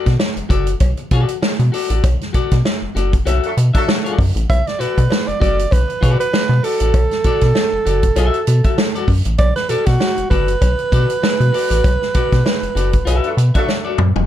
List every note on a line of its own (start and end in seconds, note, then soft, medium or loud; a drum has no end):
0.06 0.17 B2 loud
0.06 kick medium
0.06 snare soft
0.06 closed hi-hat medium
0.19 muted clean electric guitar stroke soft
0.19 snare medium
0.19 cowbell medium
0.36 0.42 F#1 soft
0.36 muted clean electric guitar stroke soft
0.36 closed hi-hat soft
0.49 0.75 F#1 medium
0.49 0.70 F#4 medium
0.49 0.67 A4 medium
0.49 0.66 D5 medium
0.49 kick medium
0.49 closed hi-hat medium
0.67 muted clean electric guitar stroke soft
0.67 closed hi-hat medium
0.80 0.95 B1 medium
0.80 muted clean electric guitar stroke soft
0.80 kick medium
0.80 closed hi-hat medium
0.80 cowbell medium
0.97 muted clean electric guitar stroke soft
0.97 closed hi-hat soft
1.11 1.25 B2 loud
1.11 1.33 F#4 medium
1.11 1.29 A4 medium
1.11 1.28 D5 medium
1.11 kick medium
1.11 closed hi-hat medium
1.28 muted clean electric guitar stroke soft
1.28 closed hi-hat medium
1.42 muted clean electric guitar stroke soft
1.42 snare loud
1.42 cowbell medium
1.59 1.70 B2 loud
1.59 muted clean electric guitar stroke medium
1.59 closed hi-hat soft
1.72 1.89 F#4 medium
1.72 1.89 A4 medium
1.72 1.88 D5 medium
1.72 open hi-hat medium
1.89 2.01 A1 medium
1.89 2.03 F#4 medium
1.89 2.03 A4 medium
1.89 2.02 D5 medium
1.89 closed hi-hat medium
2.04 2.18 B1 loud
2.04 kick loud
2.04 closed hi-hat loud
2.04 cowbell medium
2.21 snare soft
2.21 closed hi-hat soft
2.33 2.41 B2 medium
2.33 2.54 F#4 medium
2.33 2.54 A4 medium
2.33 2.55 D5 medium
2.33 kick medium
2.33 closed hi-hat medium
2.51 2.63 B2 loud
2.51 kick medium
2.51 snare soft
2.51 closed hi-hat medium
2.64 muted clean electric guitar stroke soft
2.64 snare medium
2.64 cowbell medium
2.82 2.87 F#1 soft
2.95 3.21 F#1 loud
2.95 3.12 F#4 medium
2.95 3.12 A4 medium
2.95 3.11 D5 medium
2.95 closed hi-hat medium
3.12 muted clean electric guitar stroke soft
3.12 kick medium
3.12 closed hi-hat medium
3.25 3.40 B1 loud
3.25 3.46 F#4 medium
3.25 3.46 A4 medium
3.25 3.47 E5 medium
3.25 closed hi-hat medium
3.25 cowbell medium
3.43 3.53 F#3 medium
3.43 3.53 A3 medium
3.43 3.52 D4 medium
3.43 3.53 A4 medium
3.43 closed hi-hat soft
3.57 3.71 B2 loud
3.57 muted clean electric guitar stroke soft
3.57 closed hi-hat medium
3.74 4.16 F#3 loud
3.74 4.16 A3 loud
3.74 4.16 D4 loud
3.74 3.87 F#4 medium
3.74 4.16 A4 loud
3.74 3.87 A4 medium
3.74 3.87 E5 medium
3.74 kick medium
3.74 closed hi-hat medium
3.88 muted clean electric guitar stroke soft
3.88 snare loud
3.88 cowbell medium
4.04 4.17 F#4 medium
4.04 4.18 A4 medium
4.04 4.18 D5 medium
4.04 closed hi-hat soft
4.18 4.32 F#2 loud
4.18 muted clean electric guitar stroke soft
4.18 kick loud
4.18 open hi-hat medium
4.35 4.46 A1 medium
4.35 muted clean electric guitar stroke soft
4.35 closed hi-hat medium
4.50 4.63 B1 loud
4.50 4.69 E5 loud
4.50 kick loud
4.50 closed hi-hat medium
4.50 cowbell medium
4.67 4.82 D5 loud
4.67 snare soft
4.67 closed hi-hat soft
4.79 4.87 B2 medium
4.79 4.99 F#4 medium
4.79 5.00 A4 medium
4.79 5.29 B4 loud
4.79 5.00 D5 medium
4.79 closed hi-hat medium
4.98 5.08 B2 loud
4.98 kick medium
4.98 closed hi-hat medium
5.10 muted clean electric guitar stroke soft
5.10 snare loud
5.10 cowbell medium
5.26 5.33 F#1 soft
5.26 5.41 D5 loud
5.26 muted clean electric guitar stroke soft
5.26 closed hi-hat soft
5.40 5.66 F#1 loud
5.40 5.61 F#4 medium
5.40 5.58 A4 medium
5.40 5.74 D5 medium
5.40 5.56 D5 medium
5.40 kick medium
5.40 closed hi-hat medium
5.57 muted clean electric guitar stroke soft
5.57 closed hi-hat medium
5.71 5.86 B1 medium
5.71 6.19 B4 loud
5.71 muted clean electric guitar stroke soft
5.71 kick loud
5.71 closed hi-hat medium
5.71 cowbell medium
5.88 muted clean electric guitar stroke soft
5.88 closed hi-hat soft
6.01 6.16 B2 loud
6.01 6.23 F#4 medium
6.01 6.19 A4 medium
6.01 6.18 D5 medium
6.01 kick loud
6.01 closed hi-hat medium
6.19 6.65 B4 loud
6.19 muted clean electric guitar stroke medium
6.19 closed hi-hat medium
6.32 muted clean electric guitar stroke soft
6.32 snare loud
6.32 cowbell medium
6.49 6.61 B2 loud
6.49 muted clean electric guitar stroke soft
6.63 6.80 F#4 medium
6.63 9.09 A4 loud
6.63 6.80 A4 medium
6.63 6.79 D5 medium
6.63 open hi-hat medium
6.80 6.92 A1 medium
6.80 6.94 F#4 medium
6.80 6.94 A4 medium
6.80 6.93 D5 medium
6.80 closed hi-hat medium
6.94 7.08 B1 loud
6.94 kick loud
6.94 closed hi-hat medium
6.94 cowbell medium
7.11 snare soft
7.11 closed hi-hat soft
7.24 7.31 B2 soft
7.24 7.45 F#4 medium
7.24 7.45 A4 medium
7.24 7.46 D5 loud
7.24 kick medium
7.24 closed hi-hat medium
7.41 7.53 B2 loud
7.41 kick medium
7.41 snare soft
7.41 closed hi-hat medium
7.55 muted clean electric guitar stroke soft
7.55 snare loud
7.55 cowbell medium
7.73 7.78 F#1 soft
7.85 8.11 F#1 loud
7.85 8.02 F#4 medium
7.85 8.03 A4 medium
7.85 8.02 D5 medium
7.85 closed hi-hat medium
8.03 muted clean electric guitar stroke soft
8.03 kick medium
8.03 closed hi-hat medium
8.16 8.31 B1 loud
8.16 8.38 F#4 medium
8.16 8.38 A4 medium
8.16 8.39 E5 medium
8.16 closed hi-hat medium
8.16 cowbell medium
8.34 closed hi-hat soft
8.47 8.61 B2 loud
8.47 muted clean electric guitar stroke soft
8.47 closed hi-hat medium
8.64 8.76 F#4 soft
8.64 8.77 A4 medium
8.64 8.77 E5 medium
8.64 kick medium
8.64 closed hi-hat medium
8.78 muted clean electric guitar stroke soft
8.78 snare loud
8.78 cowbell medium
8.95 9.08 F#4 medium
8.95 9.09 A4 medium
8.95 9.09 D5 medium
8.95 closed hi-hat soft
9.08 9.22 F#2 loud
9.08 muted clean electric guitar stroke soft
9.08 kick medium
9.08 open hi-hat medium
9.25 9.37 A1 medium
9.25 muted clean electric guitar stroke medium
9.25 closed hi-hat medium
9.38 9.53 B1 loud
9.38 9.55 D5 loud
9.38 kick loud
9.38 closed hi-hat medium
9.38 cowbell medium
9.56 9.70 B4 loud
9.56 snare soft
9.56 closed hi-hat soft
9.69 9.77 B2 soft
9.69 9.90 F#4 medium
9.69 9.88 A4 loud
9.69 9.90 A4 medium
9.69 9.91 D5 loud
9.69 closed hi-hat medium
9.86 9.98 B2 loud
9.86 10.30 F#4 loud
9.86 kick medium
9.86 snare soft
9.86 closed hi-hat medium
10.00 muted clean electric guitar stroke soft
10.00 snare medium
10.00 cowbell medium
10.17 10.23 F#1 soft
10.17 muted clean electric guitar stroke soft
10.17 closed hi-hat soft
10.30 10.56 F#1 loud
10.30 10.51 F#4 medium
10.30 10.48 A4 medium
10.30 13.64 B4 loud
10.30 10.46 D5 medium
10.30 kick medium
10.30 closed hi-hat medium
10.48 muted clean electric guitar stroke soft
10.48 closed hi-hat medium
10.61 10.76 B1 medium
10.61 muted clean electric guitar stroke soft
10.61 kick medium
10.61 closed hi-hat loud
10.61 cowbell medium
10.79 muted clean electric guitar stroke medium
10.79 closed hi-hat soft
10.92 11.06 B2 loud
10.92 11.12 F#4 medium
10.92 11.09 A4 medium
10.92 11.08 D5 loud
10.92 kick loud
10.92 closed hi-hat medium
11.09 muted clean electric guitar stroke soft
11.09 closed hi-hat medium
11.22 muted clean electric guitar stroke soft
11.22 snare loud
11.22 cowbell medium
11.40 11.51 B2 loud
11.40 muted clean electric guitar stroke soft
11.40 closed hi-hat soft
11.53 11.70 F#4 medium
11.53 11.69 A4 medium
11.53 11.69 D5 medium
11.53 open hi-hat medium
11.70 11.82 A1 medium
11.70 11.84 F#4 medium
11.70 11.83 A4 medium
11.70 11.83 D5 medium
11.70 closed hi-hat medium
11.84 11.98 B1 loud
11.84 kick loud
11.84 closed hi-hat medium
11.84 cowbell medium
12.02 snare soft
12.14 12.22 B2 medium
12.14 12.35 F#4 medium
12.14 12.35 A4 medium
12.14 12.35 D5 medium
12.14 kick medium
12.14 closed hi-hat medium
12.32 12.43 B2 loud
12.32 kick medium
12.32 snare soft
12.32 closed hi-hat medium
12.45 muted clean electric guitar stroke soft
12.45 snare loud
12.45 cowbell medium
12.62 12.68 F#1 medium
12.62 closed hi-hat soft
12.75 13.01 F#1 loud
12.75 12.92 F#4 medium
12.75 12.92 A4 medium
12.75 12.91 D5 medium
12.75 closed hi-hat medium
12.92 muted clean electric guitar stroke soft
12.92 kick medium
12.92 closed hi-hat medium
13.05 13.21 B1 medium
13.05 13.27 F#4 medium
13.05 13.28 A4 medium
13.05 13.28 E5 medium
13.05 closed hi-hat medium
13.05 cowbell medium
13.24 13.33 F#3 medium
13.24 13.33 A3 medium
13.24 13.33 D4 medium
13.24 13.33 A4 medium
13.24 closed hi-hat soft
13.37 13.51 B2 loud
13.37 muted clean electric guitar stroke soft
13.37 closed hi-hat medium
13.54 13.96 F#3 medium
13.54 13.97 A3 loud
13.54 13.97 D4 loud
13.54 13.66 F#4 medium
13.54 13.97 A4 loud
13.54 13.67 A4 medium
13.54 13.67 E5 medium
13.54 kick medium
13.54 closed hi-hat medium
13.67 muted clean electric guitar stroke soft
13.67 snare medium
13.67 cowbell medium
13.85 13.98 F#4 medium
13.85 13.98 A4 medium
13.85 13.99 D5 medium
13.98 14.13 F#2 medium
13.98 muted clean electric guitar stroke soft
13.98 mid tom medium
14.16 14.26 E1 loud
14.16 muted clean electric guitar stroke soft
14.16 floor tom medium